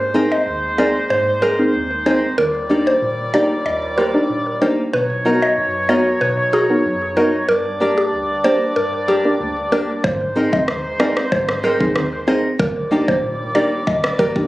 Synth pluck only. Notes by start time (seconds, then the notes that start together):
Already playing: C5
0.32 D#5
0.78 D5
1.10 C5
1.42 A#4
2.06 C5
2.38 A#4
2.87 C5
3.34 D5
3.66 D#5
3.98 A#4
4.62 C5
4.93 B4
5.42 D#5
5.89 C#5
6.21 B4
6.53 G#4
7.17 A#4
7.49 A#4
7.98 G4
8.44 C5
8.76 A#4
9.08 G4
9.72 A#4
10.04 C5
10.53 D#5
11.00 D5
11.32 C5
11.64 A#4
12.28 C5
12.60 A#4
13.08 C5
13.55 D5
13.87 D#5
14.19 A#4